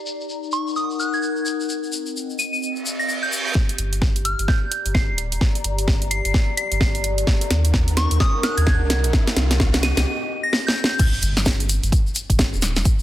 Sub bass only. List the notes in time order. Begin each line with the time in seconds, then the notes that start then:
3.79 G1
4.39 G1
4.86 G1
5.09 D1
5.32 F1
5.64 G1
6.25 G1
6.72 G1
7.50 D#2
8.11 D#2
8.57 D#2
8.81 C2
9.04 A#1
9.36 C2
9.97 C2
11.22 G1
11.83 G1
12.30 G1
12.53 D1
12.76 F1